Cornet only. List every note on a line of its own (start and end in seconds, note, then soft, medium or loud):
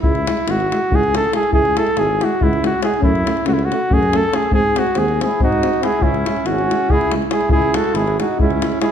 0.03 0.52 E4 medium
0.50 0.97 F#4 medium
0.95 1.16 G#4 loud
1.16 1.33 A4 loud
1.36 1.52 G#4 medium
1.54 1.79 G#4 loud
1.78 2.00 A4 medium
1.99 2.25 G#4 medium
2.24 2.45 F#4 medium
2.43 2.64 E4 medium
2.66 2.83 F#4 medium
2.83 3.01 G#4 medium
3.04 3.44 E4 loud
3.48 3.55 F#4 medium
3.54 3.66 E4 medium
3.65 3.95 F#4 medium
3.93 4.18 G#4 medium
4.16 4.37 A4 loud
4.35 4.53 G#4 medium
4.54 4.80 G#4 loud
4.78 5.00 F#4 medium
4.98 5.21 G#4 medium
5.23 5.40 G#4 medium
5.43 5.86 F#4 medium
5.85 6.05 G#4 medium
6.03 6.48 E4 medium
6.47 6.92 F#4 medium
6.91 7.12 G#4 medium
7.32 7.49 G#4 medium
7.52 7.78 G#4 medium
7.76 7.98 A4 medium
7.97 8.20 G#4 medium
8.21 8.38 F#4 medium
8.40 8.78 E4 medium
8.81 8.91 G#4 medium